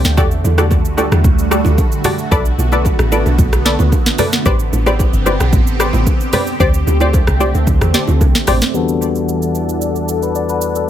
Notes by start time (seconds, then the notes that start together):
Already playing: D3 A3 C4 G4
0.04 D2, snare, shaker
0.17 E2 G3 F#4 G4 A4 D5, kick, low conga, shaker
0.31 shaker
0.44 E2, high bongo, low bongo, shaker
0.58 F#4 G4 A4 D5, cross-stick, low bongo, shaker
0.71 kick, high bongo, shaker
0.85 D2, shaker
0.97 F#4 G4 A4 D5, low bongo, shaker
1.12 E2, cross-stick, high bongo, shaker
1.24 D2, kick, low conga, shaker
1.39 shaker
1.51 F#4 G4 A4 D5, cross-stick, shaker
1.65 D2, low bongo, shaker
1.78 kick, high bongo, shaker
1.92 shaker
2.04 F#4 G4 A4 D5, cross-stick, open hi-hat, low conga, shaker
2.19 shaker
2.31 B1 B3 A4 B4 D5, kick, low conga, shaker
2.45 shaker
2.58 B1, high bongo, low bongo, shaker
2.72 A4 B4 D5, low bongo, shaker
2.85 kick, high bongo, shaker
2.99 A1, cross-stick, shaker
3.12 A4 B4 D5, low bongo, shaker
3.26 B1, high bongo, shaker
3.39 B1, kick, low conga, shaker
3.53 cross-stick, shaker
3.65 A4 B4 D5, snare, shaker
3.79 D2, low bongo, shaker
3.92 kick, high bongo, shaker
4.06 snare, shaker
4.18 A4 B4 D5, cross-stick, open hi-hat, low conga, shaker
4.32 snare, shaker
4.46 A1 B3 C4 G4 B4 C5 D5, kick, low conga, shaker
4.59 shaker
4.73 A1, high bongo, low bongo, shaker
4.86 G4 B4 C5 D5, cross-stick, low bongo, shaker
4.99 kick, high bongo, shaker
5.13 G1, shaker
5.26 G4 B4 C5 D5, low bongo, shaker
5.40 B1, cross-stick, high bongo, shaker
5.53 A1, kick, low conga, shaker
5.67 shaker
5.80 G4 B4 C5 D5, cross-stick, shaker
5.93 A1, low bongo, shaker
6.07 kick, high bongo, shaker
6.21 shaker
6.33 G4 B4 C5 D5, cross-stick, open hi-hat, low conga, shaker
6.47 shaker
6.60 D2 D3 A3 C4 G4 C5 D5, kick, low conga, shaker
6.74 shaker
6.87 D2, high bongo, low bongo, shaker
7.00 G4 C5 D5, low bongo, shaker
7.13 kick, high bongo, shaker
7.27 C2, cross-stick, shaker
7.40 G4 C5 D5, low bongo, shaker
7.55 D2, high bongo, shaker
7.67 D2, kick, low conga, shaker
7.81 E2, cross-stick, shaker
7.94 G4 C5 D5, snare, shaker
8.08 D2, low bongo, shaker
8.21 C2, kick, high bongo, shaker
8.35 snare, shaker
8.47 A1 G4 C5 D5, cross-stick, open hi-hat, low conga, shaker
8.61 snare, shaker
8.74 E2 E3 G3 B3 D4 F#4 A4 D5 F#5 A5, shaker
8.88 shaker
9.02 shaker
9.15 shaker
9.29 shaker
9.42 shaker
9.55 shaker
9.69 shaker
9.81 shaker
9.96 shaker
10.08 A4, shaker
10.22 B4, shaker
10.35 D5, shaker
10.49 B4, shaker
10.61 shaker
10.75 A4, shaker